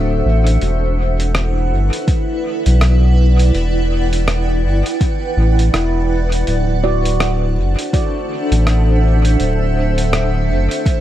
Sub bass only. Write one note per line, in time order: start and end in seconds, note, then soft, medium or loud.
0.00 0.22 D1 medium
0.25 0.58 A1 medium
0.61 1.73 E1 medium
1.71 1.90 G1 medium
2.66 3.51 B1 loud
3.54 4.65 E1 loud
4.64 4.83 G1 medium
5.37 5.70 A1 loud
5.74 6.44 E1 medium
6.47 7.58 D1 medium
7.57 7.76 F#1 medium
8.51 9.37 A1 loud
9.39 10.51 D1 loud
10.49 10.68 F#1 medium